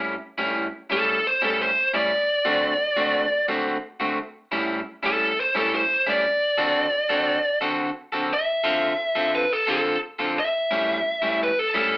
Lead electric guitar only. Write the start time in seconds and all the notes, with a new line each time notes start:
0.92 A4
1.27 C5
1.44 A4
1.62 C5
1.95 D5
5.06 A4
5.40 C5
5.57 A4
5.75 C5
6.09 D5
8.34 E5
9.35 B4
9.53 A4
9.71 A4
10.39 E5
11.43 B4
11.59 A4
11.76 A4